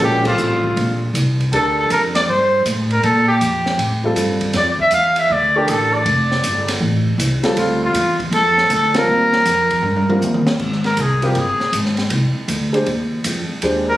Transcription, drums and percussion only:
0.00 ride
0.25 kick, crash
0.38 hi-hat pedal
0.64 kick
0.77 ride
1.15 hi-hat pedal, ride
1.40 ride
1.53 ride
1.90 hi-hat pedal, ride
2.15 snare, ride
2.66 hi-hat pedal, ride
2.91 ride
3.03 ride
3.41 hi-hat pedal, ride
3.66 snare
3.79 ride
4.16 hi-hat pedal, ride
4.41 kick, ride
4.53 snare, ride
4.79 kick
4.91 hi-hat pedal, ride
5.16 ride
5.68 hi-hat pedal, ride
6.06 ride
6.32 snare
6.44 hi-hat pedal, ride
6.68 snare, ride
7.19 hi-hat pedal, ride
7.43 snare, ride
7.57 ride
7.94 hi-hat pedal, ride
8.20 kick, ride
8.32 ride
8.58 snare
8.70 hi-hat pedal, ride
8.94 snare, ride
9.33 snare
9.45 snare, hi-hat pedal, ride
9.71 kick, ride
9.84 high tom
9.96 high tom
10.10 high tom
10.22 hi-hat pedal, mid tom
10.34 mid tom
10.47 snare
10.59 kick, crash
10.72 snare
10.84 snare, ride
10.97 hi-hat pedal, ride
11.22 ride
11.35 ride
11.60 snare
11.73 hi-hat pedal, ride
11.85 snare
11.97 snare, ride
12.10 ride
12.48 hi-hat pedal, ride
12.74 ride
12.86 ride
13.24 hi-hat pedal, ride
13.62 ride

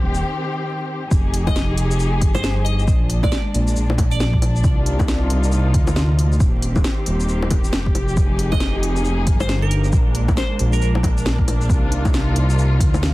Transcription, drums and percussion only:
0.15 shaker
1.11 kick, shaker
1.34 open hi-hat
1.47 kick, low bongo, shaker
1.56 snare, shaker
1.77 open hi-hat
1.91 shaker
2.00 shaker
2.22 kick, open hi-hat
2.35 low bongo, shaker
2.44 snare, shaker
2.66 open hi-hat
2.79 shaker
2.88 kick, shaker
3.10 open hi-hat
3.23 kick, low bongo, shaker
3.32 snare, shaker
3.54 open hi-hat
3.68 shaker
3.76 shaker
3.90 low bongo
3.98 kick, open hi-hat, low bongo
4.12 shaker
4.20 snare, shaker
4.33 kick
4.42 open hi-hat, low bongo
4.56 shaker
4.64 kick, shaker
4.86 open hi-hat
4.99 kick, low bongo, shaker
5.08 snare, shaker
5.30 open hi-hat
5.44 shaker
5.52 shaker
5.74 kick, open hi-hat
5.87 low bongo, shaker
5.96 snare, shaker
6.19 open hi-hat
6.32 shaker
6.40 kick, shaker
6.62 open hi-hat
6.76 kick, low bongo, shaker
6.84 snare, shaker
7.06 open hi-hat
7.20 shaker
7.29 shaker
7.42 low bongo
7.50 kick, open hi-hat, low bongo
7.64 shaker
7.73 snare, shaker
7.86 kick
7.95 open hi-hat, low bongo
8.08 shaker
8.17 kick, shaker
8.39 open hi-hat
8.52 kick, low bongo, shaker
8.60 snare, shaker
8.83 open hi-hat
8.96 shaker
9.05 shaker
9.27 kick, open hi-hat
9.40 low bongo, shaker
9.49 snare, shaker
9.71 open hi-hat
9.84 shaker
9.93 kick, shaker
10.15 open hi-hat
10.28 kick, low bongo, shaker
10.37 snare, shaker
10.59 open hi-hat
10.73 shaker
10.82 shaker
10.95 low bongo
11.03 kick, open hi-hat, low bongo
11.18 shaker
11.26 snare, shaker
11.39 kick
11.48 open hi-hat, low bongo
11.61 shaker
11.70 kick, shaker
11.92 open hi-hat
12.05 kick, low bongo, shaker
12.14 snare, shaker
12.36 open hi-hat
12.50 shaker
12.59 shaker
12.80 kick, open hi-hat
12.94 low bongo, shaker
13.03 snare, shaker

